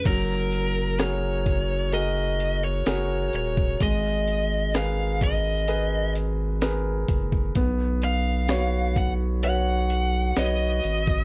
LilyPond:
<<
  \new Staff \with { instrumentName = "Lead electric guitar" } { \time 4/4 \key fis \major \tempo 4 = 64 ais'4 cis''4 dis''8. cis''8. cis''8 | dis''4 eis''8 dis''4 r4. | r8 eis''4 fis''8 fis''4 dis''4 | }
  \new Staff \with { instrumentName = "Grand piano" } { \time 4/4 \key fis \major fis4 <fis' gis' ais'>4 <fis' gis' ais'>4 <fis' gis' ais'>4 | gis4 <gis' ais' b'>4 <gis' ais' b'>4 <gis' ais' b'>4 | b4 <fis' b' cis''>4 <fis' b' cis''>4 <fis' b' cis''>4 | }
  \new Staff \with { instrumentName = "Sub bass" } { \clef bass \time 4/4 \key fis \major fis,,2. fis,,8 dis,,8 | gis,,2.~ gis,,8 fis,,8 | b,,2. b,,8 gis,,8 | }
  \new DrumStaff \with { instrumentName = "Drums" } \drummode { \time 4/4 <cymc hh bd>8 hh8 <hh sn>8 <hh bd>8 hh8 hh8 <hh sn>8 hh16 bd16 | <hh bd>8 hh8 <hh sn>8 <hh bd>8 hh8 hh8 <hh sn>8 <hh bd>16 bd16 | <hh bd>8 hh8 <hh sn>8 <hh bd>8 hh8 hh8 <hh sn>8 hh16 bd16 | }
>>